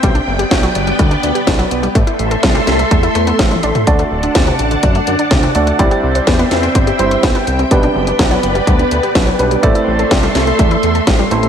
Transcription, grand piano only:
X:1
M:4/4
L:1/8
Q:1/4=125
K:G
V:1 name="Grand piano"
z8 | z8 | [A,DFd]6- [A,DFd] [A,DFd] | [G,CEd]4- [G,CEd] [G,CEc]3 |
[G,B,DB]6- [G,B,DB] [G,B,DB] | [A,CEd]4- [A,CEd] z2 [A,CEc] |]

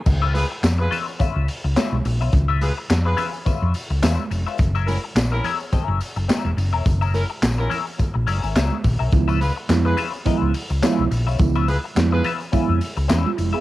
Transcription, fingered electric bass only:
X:1
M:4/4
L:1/16
Q:"Swing 16ths" 1/4=106
K:Gb
V:1 name="Fingered electric bass" clef=bass
D,,3 z F,,2 z3 D,, z D,, z C,, B,,, C,, | D,,3 z F,,2 z3 F,, z D,, =E,, z F,,, z | G,,,3 z B,,,2 z3 G,,, z G,,, z _F,,, G,,, F,,, | G,,,3 z B,,,2 z3 B,,, G,,, A,,, D,, z B,,, C,, |
D,,3 z F,,2 z3 D,, z D,, z C,, B,,, C,, | D,,3 z F,,2 z3 F,, z D,, =E,, z F,,, z |]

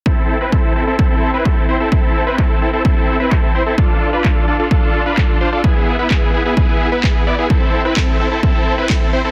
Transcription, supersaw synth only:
X:1
M:4/4
L:1/16
Q:1/4=129
K:Am
V:1 name="Supersaw synth"
[CEA]3 [CEB] [CEA]2 [CEA] [CEA] [CEA] [CEA]2 [CEB] [CEA]2 [CEc] [CEA] | [CEA]3 [CEB] [CEA]2 [CEA] [CEA] [CEA] [CEA]2 [CEB] [CEA]2 [CEc] [CEA] | [DFA]3 [DFB] [DFA]2 [DFA] [DFA] [DFA] [DFA]2 [DFB] [DFA]2 [DFc] [DFA] | [B,E^G]3 [B,EB] [B,EG]2 [B,EG] [B,EG] [B,EG] [B,EG]2 [B,EB] [B,EG]2 [B,Ed] [B,EG] |
[CEA]3 [CEB] [CEA]2 [CEA] [CEA] [CEA] [CEA]2 [CEB] [CEA]2 [CEc] [CEA] |]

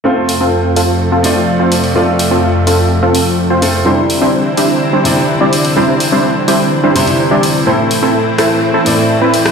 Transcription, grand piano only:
X:1
M:4/4
L:1/16
Q:1/4=126
K:Flyd
V:1 name="Grand piano"
[A,CFc]8- [A,CFc]2 [A,CFd]6 | [A,CFd]12- [A,CFd]2 [A,CFA]2 | [C,G,DEc]8- [C,G,DEc]2 [C,G,DEd]6 | [C,G,DEd]8- [C,G,DEd]2 [C,G,DEc] [C,G,DEc]4- [C,G,DEc] |
[A,,A,CEc]8- [A,,A,CEc]2 [A,,A,CEd]6 |]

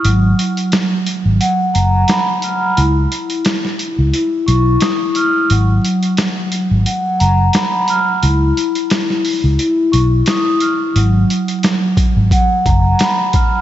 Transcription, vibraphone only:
X:1
M:4/4
L:1/8
Q:"Swing 16ths" 1/4=88
K:G#m
V:1 name="Vibraphone"
F,4 f a b ^e' | E4 E c' d' ^e' | F,4 f a b ^e' | E4 E c' d' ^e' |
F,4 f a b ^e' |]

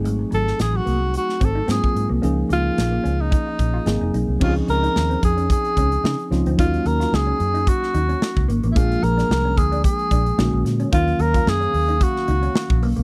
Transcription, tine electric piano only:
X:1
M:4/4
L:1/8
Q:"Swing 16ths" 1/4=110
K:Ab
V:1 name="Tine electric piano"
[_G,=A,CE_A]6 [G,B,CFA]2 | [F,B,DEA]6 [_G,B,CEA]2 | [K:Db] [F,CDE=GA]6- [F,CDEGA] [F,CDEF] | [G,B,DEFG]8 |
[F,A,B,=DA]6 [=D,A,B,^C^F]2 | [E,G,B,Df]8 |]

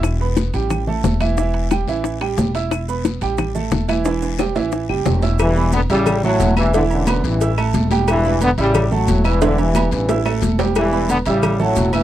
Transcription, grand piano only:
X:1
M:4/4
L:1/8
Q:1/4=179
K:Amix
V:1 name="Grand piano"
[Eee'] [B,Bb]2 [G,Gg]2 [A,Aa]2 [E,Ee] | [E,Ee]2 [G,Gg] [E,Ee]2 [G,Gg]2 [Eee']- | [Eee'] [B,Bb]2 [G,Gg]2 [A,Aa]2 [E,Ee] | [E,Ee]2 [G,Gg] [E,Ee]2 [G,Gg]2 [Eee'] |
z [B,Bb]2 [Eee']2 [A,Aa]2 [Eee'] | [E,Ee]2 [B,Bb]2 [Eee'] [A,Aa]2 [G,Gg]- | [G,Gg] [B,Bb]2 [Eee']2 [A,Aa]2 [Eee'] | [E,Ee]2 [B,Bb]2 [Eee'] [A,Aa]2 [G,Gg]- |
[G,Gg] [B,Bb]2 [Eee']2 [A,Aa]2 [Eee'] |]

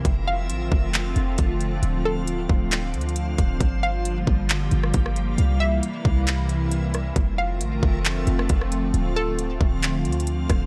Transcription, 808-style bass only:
X:1
M:4/4
L:1/8
Q:1/4=135
K:Gdor
V:1 name="808-style bass" clef=bass
F,,,2 A,,, F,,,2 F,,, F,,,2 | D,,,3 D,,,2 D,,2 D,,, | G,,,3 G,,,2 G,,, G,,,2 | C,,2 z C,,4- C,, |
F,,,2 A,,, F,,,2 F,,, F,,,2 | D,,,3 D,,,2 D,,2 D,,, |]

